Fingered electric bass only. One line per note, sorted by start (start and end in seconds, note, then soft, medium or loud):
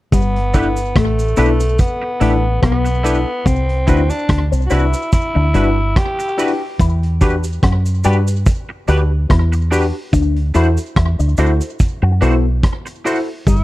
0.13 0.92 G1 medium
0.96 1.35 A1 medium
1.38 1.77 B1 medium
2.21 2.61 A1 medium
2.63 3.24 B1 loud
3.46 3.86 C2 loud
3.88 4.09 D2 medium
4.29 4.51 D2 medium
4.52 4.70 C2 medium
4.72 4.93 C2 medium
5.36 5.54 D2 medium
5.55 5.94 G1 medium
6.80 7.59 E2 loud
7.63 8.03 F#2 medium
8.05 8.45 G2 medium
8.88 9.28 D2 medium
9.30 9.91 E2 medium
10.13 10.53 D2 loud
10.55 10.76 E2 medium
10.97 11.18 E2 medium
11.19 11.37 D2 medium
11.38 11.60 D2 medium
12.03 12.21 F#2 medium
12.22 12.61 B1 medium
13.47 13.64 G1 medium